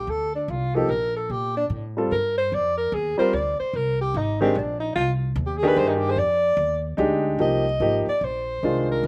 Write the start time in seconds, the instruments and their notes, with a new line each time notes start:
Already playing: alto saxophone G4
0.07 upright bass D2, alto saxophone A4
0.35 alto saxophone D4
0.48 upright bass C2, alto saxophone F4
0.75 grand piano F3 A#3 D#4 G4, alto saxophone A4
0.89 upright bass A#1, alto saxophone A#4
1.17 alto saxophone A4
1.29 upright bass A#2, alto saxophone G4
1.57 alto saxophone D4
1.70 upright bass A2
1.97 grand piano G3 C4 F4 A4
2.11 upright bass G2, alto saxophone A#4
2.38 alto saxophone C5
2.52 upright bass F2, alto saxophone D5
2.77 alto saxophone A#4
2.92 upright bass D#2, alto saxophone G#4
3.18 grand piano G3 C4 F4 A#4, alto saxophone C5, muted upright bass stroke
3.33 upright bass D2, alto saxophone D5
3.60 alto saxophone C5, muted upright bass stroke
3.73 upright bass C2, alto saxophone A#4
4.01 alto saxophone G4
4.14 upright bass G#1, alto saxophone D#4
4.41 grand piano D#3 G#3 D4 G4, alto saxophone C4
4.55 upright bass A#1, alto saxophone D4
4.80 alto saxophone D#4
4.95 upright bass C2, alto saxophone F4
5.36 upright bass D#2
5.47 alto saxophone G4
5.57 alto saxophone G#4
5.63 grand piano D#3 D4 G4 G#4
5.68 alto saxophone B4
5.76 upright bass G2, alto saxophone C5
5.89 alto saxophone D#4
5.97 alto saxophone G4
6.10 alto saxophone C5
6.16 upright bass F2, alto saxophone D5
6.57 upright bass D#2
6.97 upright bass D2, grand piano G#3 D4 D#4 G4
7.39 upright bass C2, grand piano F3 A#3 D#4 G4, alto saxophone D#5
7.80 upright bass G#1, grand piano F3 A#3 D#4 G4
8.07 alto saxophone D5, muted upright bass stroke
8.21 upright bass A#1, alto saxophone C5
8.63 upright bass C2, grand piano D#3 G#3 D4 F4
8.91 alto saxophone A#4
9.03 upright bass D#2